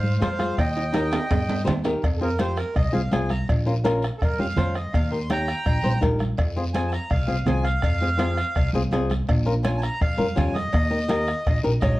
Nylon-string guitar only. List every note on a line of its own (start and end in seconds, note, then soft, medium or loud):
0.20 0.27 F4 medium
0.20 0.28 G#4 medium
0.20 0.28 C5 medium
0.39 0.57 F4 medium
0.39 0.58 G#4 medium
0.39 0.58 C5 medium
0.93 1.19 D#4 medium
0.93 1.19 G4 medium
0.93 1.19 A#4 medium
1.64 1.72 D#4 medium
1.64 1.72 G4 medium
1.64 1.72 C5 medium
1.84 2.03 D#4 medium
1.84 2.03 G4 medium
1.84 2.03 A#4 medium
2.21 2.27 C4 medium
2.21 2.28 F4 medium
2.21 2.28 G#4 medium
2.39 2.58 C4 medium
2.39 2.58 F4 medium
2.39 2.59 G4 medium
2.92 2.99 C4 medium
2.92 3.00 F4 medium
2.92 3.00 G#4 medium
3.11 3.31 C4 medium
3.11 3.31 F4 medium
3.11 3.31 G#4 medium
3.66 3.72 C#4 medium
3.66 3.73 F4 medium
3.66 3.73 A#4 medium
3.84 4.03 C#4 medium
3.84 4.03 F4 medium
3.84 4.03 A#4 loud
4.38 4.45 C#4 medium
4.38 4.45 F4 medium
4.38 4.45 G4 medium
4.56 4.76 C#4 medium
4.56 4.76 F4 medium
4.56 4.76 C5 medium
5.11 5.18 D#4 medium
5.11 5.18 G4 medium
5.11 5.18 A#4 medium
5.30 5.49 D#4 medium
5.30 5.49 G4 medium
5.30 5.49 C#5 medium
5.83 5.90 D#4 medium
5.83 5.90 G4 medium
5.83 5.91 C5 loud
6.02 6.21 D#4 medium
6.02 6.21 G4 medium
6.02 6.21 A#4 medium
6.56 6.63 C4 medium
6.56 6.63 F4 medium
6.56 6.63 G#4 medium
6.74 6.94 C4 medium
6.74 6.94 F4 medium
6.74 6.94 G#4 medium
7.27 7.35 C4 medium
7.27 7.35 F4 medium
7.27 7.35 G#4 medium
7.46 7.66 C4 medium
7.46 7.66 F4 medium
7.46 7.66 G#4 medium
8.01 8.08 C4 medium
8.01 8.08 F4 medium
8.01 8.08 G#4 medium
8.18 8.38 C4 medium
8.18 8.38 F4 medium
8.18 8.38 G#4 medium
8.74 8.81 C4 medium
8.74 8.81 F4 medium
8.74 8.81 G#4 medium
8.92 9.11 C4 medium
8.92 9.11 F4 medium
8.92 9.12 G#4 loud
9.45 9.52 C#4 medium
9.45 9.52 F4 medium
9.45 9.53 A#4 medium
9.63 9.83 C#4 medium
9.63 9.83 F4 medium
9.63 9.84 C#5 medium
10.17 10.25 C#4 medium
10.17 10.25 F4 medium
10.17 10.25 A#4 medium
10.35 10.56 C#4 medium
10.35 10.56 F4 medium
10.35 10.56 G4 medium
10.90 10.97 D#4 medium
10.90 10.98 G4 medium
10.90 10.98 A#4 medium
11.08 11.28 D#4 medium
11.08 11.28 G4 medium
11.08 11.29 A#4 loud
11.63 11.70 D#4 medium
11.63 11.70 G4 medium
11.63 11.71 A#4 medium
11.82 12.00 D#4 medium
11.82 12.00 G4 medium
11.82 12.00 C#5 medium